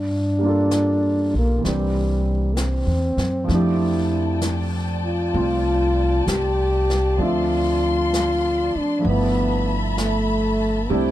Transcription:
Already playing: upright bass G2, trombone D4
0.39 grand piano G3 A#3
0.44 grand piano D4 F4
0.49 grand piano A4
0.71 brush sweep, snare, hi-hat pedal
1.34 upright bass B1, trombone A#3
1.58 grand piano E3 A#3
1.64 upright bass C2, trombone G3, grand piano C4 D4, brush sweep, snare
1.70 grand piano G4
2.54 trombone A#3 C4, brush sweep, snare, hi-hat pedal
2.87 upright bass E2
3.17 upright bass F#2, snare
3.44 grand piano F3 A3, string section D5 G5 A5
3.48 upright bass F2, grand piano C4, trombone E4, brush sweep, snare
3.54 grand piano D4 G4
4.41 brush sweep, snare, hi-hat pedal
5.06 trombone F4
5.33 upright bass C2, grand piano A3 C4 F4, brush sweep
6.27 upright bass C2, trombone G4, brush sweep, snare, hi-hat pedal
6.90 snare
7.17 upright bass D2, grand piano F3 A3 C4, string section C6
7.21 grand piano D4 E5, trombone F4, brush sweep
8.14 brush sweep, snare, hi-hat pedal
8.75 trombone D4, muted upright bass stroke
8.99 grand piano F3 A3
9.04 upright bass G1, grand piano B3 D4, string section E5 A5 B5, brush sweep
9.09 trombone B3, grand piano E4
9.98 trombone A3, brush sweep, snare, hi-hat pedal
10.89 upright bass C2, grand piano C3 G3 A3 D4 E4, trombone C4, string section E4 D5 G5, brush sweep

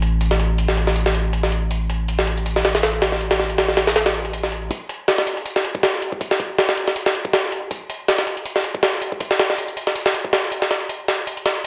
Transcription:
Already playing: 808-style bass A1
0.02 closed hi-hat
0.21 closed hi-hat
0.31 snare
0.40 closed hi-hat
0.58 closed hi-hat
0.68 snare
0.77 closed hi-hat
0.87 snare
0.96 closed hi-hat
1.06 snare
1.15 closed hi-hat
1.33 closed hi-hat
1.43 snare
1.52 closed hi-hat
1.71 closed hi-hat
1.90 closed hi-hat
2.08 closed hi-hat
2.19 snare
2.27 closed hi-hat
2.37 closed hi-hat
2.46 closed hi-hat
2.56 snare
2.65 snare, closed hi-hat
2.75 snare, closed hi-hat
2.83 snare, closed hi-hat
2.93 closed hi-hat
3.02 snare, closed hi-hat
3.12 snare
3.21 closed hi-hat
3.31 snare, closed hi-hat
3.39 snare
3.50 closed hi-hat
3.58 snare, closed hi-hat
3.68 snare
3.77 snare, closed hi-hat
3.87 snare, closed hi-hat
3.96 snare, closed hi-hat
4.06 snare, closed hi-hat
4.15 closed hi-hat
4.25 closed hi-hat
4.33 closed hi-hat
4.43 snare
4.52 closed hi-hat
4.71 kick, closed hi-hat
4.89 closed hi-hat
5.08 snare, closed hi-hat
5.18 snare
5.27 closed hi-hat
5.37 closed hi-hat
5.46 closed hi-hat
5.56 snare
5.65 closed hi-hat
5.75 kick
5.83 snare, closed hi-hat
5.94 closed hi-hat
6.02 closed hi-hat
6.12 kick
6.21 kick, closed hi-hat
6.31 snare
6.40 kick, closed hi-hat
6.59 snare, closed hi-hat
6.69 snare
6.77 closed hi-hat
6.88 snare
6.96 closed hi-hat
7.06 snare
7.15 closed hi-hat
7.25 kick
7.33 snare, closed hi-hat
7.52 closed hi-hat
7.71 kick, closed hi-hat
7.90 closed hi-hat
8.08 snare, closed hi-hat
8.18 snare
8.27 closed hi-hat
8.37 closed hi-hat
8.46 closed hi-hat
8.56 snare
8.64 closed hi-hat
8.75 kick
8.83 snare, closed hi-hat
8.93 closed hi-hat
9.02 closed hi-hat
9.12 kick
9.20 kick, closed hi-hat
9.31 snare
9.39 snare, closed hi-hat
9.50 snare
9.58 closed hi-hat
9.68 closed hi-hat
9.77 closed hi-hat
9.87 snare
9.96 closed hi-hat
10.06 snare
10.14 closed hi-hat
10.25 kick
10.33 snare, closed hi-hat
10.52 closed hi-hat
10.62 snare
10.71 snare, closed hi-hat
10.89 closed hi-hat
11.08 snare, closed hi-hat
11.27 closed hi-hat
11.37 closed hi-hat
11.46 snare, closed hi-hat

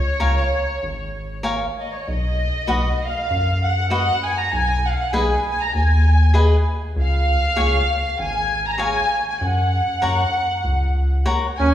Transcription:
Already playing: violin section C#5
0.20 analog synth bass C#2, cavaquinho A#4 C#5 F5 G#5
0.83 analog synth bass G#1
1.43 cavaquinho A#4 C#5 F5 G#5
1.80 violin section D#5
1.92 violin section C#5
2.06 analog synth bass B1, violin section D#5
2.67 analog synth bass B1, cavaquinho F#4 B4 D#5 F#5
3.04 violin section F5
3.31 analog synth bass F#2
3.63 violin section F#5
3.90 cavaquinho F#4 B4 D#5 F#5, violin section F#5
4.26 violin section G#5
4.39 violin section A#5
4.53 analog synth bass B1, violin section G#5
4.86 violin section F#5
4.91 violin section F5
4.99 violin section F#5
5.13 analog synth bass B1, cavaquinho G#4 B4 D#5 G#5, violin section G#5
5.49 violin section G#5
5.62 violin section A#5
5.75 analog synth bass D#2, violin section G#5
6.34 cavaquinho G#4 B4 D#5 G#5
6.96 analog synth bass C#2
7.01 violin section F5
7.56 analog synth bass C#2, cavaquinho G#4 C#5 F5 G#5
8.19 analog synth bass G#1, violin section G#5
8.66 violin section A#5
8.78 cavaquinho G#4 C#5 F5 G#5
8.82 violin section G#5
9.30 violin section G#5
9.41 analog synth bass F#2, violin section F#5
10.02 analog synth bass F#2, cavaquinho A#4 C#5 F#5 A#5
10.64 analog synth bass C#2
11.26 cavaquinho A#4 C#5 F#5 A#5
11.58 analog synth bass D#2, trumpet C#4, violin section G#5

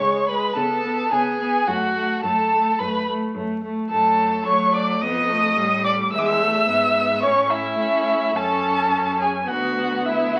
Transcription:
Already playing: violin C#5 C#6
0.00 cello C#3, viola G#3
0.28 viola G#3, violin B4 B5
0.56 cello C#3, viola B3, violin A4 A5
0.84 viola B3
1.12 cello C#3, viola B3, violin G#4 G#5
1.40 viola B3
1.67 cello F#2, viola A3, violin F#4 F#5
1.96 viola A3
2.23 cello F#2, viola A3, violin A4 A5
2.53 viola A3
2.79 cello F#2, viola A3, violin B4 B5
3.08 viola A3
3.35 cello F#2, viola A3
3.63 viola A3
3.90 cello F#2, viola A3, violin A4 A5
4.46 cello F#3, viola A3, violin C#5 C#6
4.74 violin D5 D6
5.01 cello F2, viola B3, violin D#5 D#6
5.30 viola A3
5.57 cello A2, viola G3
5.84 violin D5 D6
6.12 cello E2, viola G#3, violin E5 E6
6.19 violin D6
6.26 violin E6
6.42 viola A3
6.67 cello G#2, viola B3
7.23 cello A2, viola C#4, violin C#5 C#6
7.50 violin E4 E5
7.79 cello A3, viola C#4
8.36 cello F#2, viola C#4, violin A4 A5
9.21 violin G#4 G#5
9.48 cello D2, viola B3, violin F#4 F#5
10.06 violin E4 E5
10.36 violin F#5

